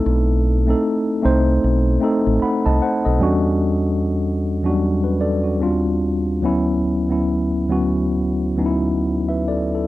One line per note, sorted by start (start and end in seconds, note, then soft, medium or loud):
0.00 0.43 A3 medium
0.00 0.44 C4 medium
0.00 0.44 D#4 medium
0.00 3.22 E4 soft
0.00 0.45 A4 medium
0.06 0.72 B1 loud
0.67 1.12 A3 medium
0.67 1.13 C4 medium
0.67 1.13 D#4 medium
0.67 1.14 A4 medium
1.22 1.58 C2 medium
1.22 1.87 A3 medium
1.22 1.88 C4 medium
1.22 1.89 D#4 medium
1.22 1.89 C5 medium
1.64 1.97 B1 medium
2.00 2.97 A3 medium
2.00 2.97 C4 medium
2.00 2.98 D#4 medium
2.00 2.42 A4 medium
2.27 2.40 A1 medium
2.42 2.64 F#5 soft
2.42 2.64 B5 medium
2.66 2.79 C2 medium
2.66 2.81 D#5 medium
2.66 2.80 A5 medium
2.82 3.04 C5 medium
2.82 3.03 F#5 medium
3.05 3.19 B1 medium
3.05 3.42 A4 soft
3.05 3.42 D#5 medium
3.19 4.31 E2 loud
3.19 4.31 G3 medium
3.19 4.32 C#4 loud
3.19 4.32 D4 medium
3.19 4.33 F#4 loud
4.62 5.60 E2 medium
4.62 4.68 F#3 soft
4.62 4.80 C#4 medium
4.62 4.80 D4 medium
4.62 4.81 F#4 medium
4.70 5.59 G3 medium
5.04 5.19 F#4 soft
5.04 5.19 B4 soft
5.21 5.43 A4 medium
5.21 5.43 D5 medium
5.44 5.82 C#4 soft
5.44 5.82 F#4 medium
5.60 6.28 D#2 medium
5.60 6.29 G3 medium
5.60 6.29 C4 medium
5.60 6.29 D4 medium
5.60 6.30 F4 medium
6.42 6.93 D2 medium
6.42 6.93 F#3 medium
6.42 6.94 B3 medium
6.42 6.94 C#4 medium
6.42 6.95 E4 loud
7.08 7.57 D2 medium
7.08 7.58 F#3 medium
7.08 7.58 B3 medium
7.08 7.59 C#4 medium
7.08 7.59 E4 medium
7.69 8.41 D2 medium
7.69 8.41 F#3 medium
7.69 8.41 B3 medium
7.69 8.42 C#4 medium
7.69 8.42 F#4 medium
8.56 9.65 D2 medium
8.56 9.66 F#3 medium
8.56 9.66 B3 medium
8.56 9.67 C#4 medium
8.56 8.66 D#4 medium
8.66 9.05 E4 medium
9.29 9.46 B4 soft
9.29 9.46 E5 soft
9.48 9.73 A4 soft
9.48 9.73 D5 medium
9.75 9.87 E4 soft
9.75 9.87 A4 medium